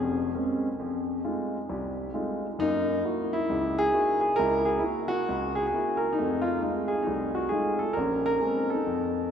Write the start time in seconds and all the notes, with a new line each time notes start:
Already playing: F1 F2 G#4
0.34 G#3 A#3 C4 C#4
0.79 F2
1.24 G#3 A3 D#4 F4
1.70 C2
2.14 G#3 A3 D#4 F4
2.59 F#2 A#3 D#4
3.04 A#3 E4 F#4
3.33 E4
3.50 C#2
3.79 G#4
3.93 A#3 E4 F#4
4.21 G#4
4.36 C#2 E4 A#4
4.65 G#4
4.79 E4
4.84 A#3 E4 F#4
5.08 F#4
5.29 C#2
5.55 G#4
5.67 G#4
5.73 A#3 E4 F#4
5.97 A#4
6.13 D#4
6.18 F2 A3
6.42 F4
6.62 G#3 A3 D#4 F4
6.88 G#4
7.02 D#4
7.07 C2 A3
7.35 F#4
7.49 G#3 A3 D#4 F4 G#4
7.79 A4
7.93 A#1 A#4
7.99 C#4
8.26 A#4
8.41 G#3 A#3 C4 C#4
8.70 D#4 A4
8.86 F2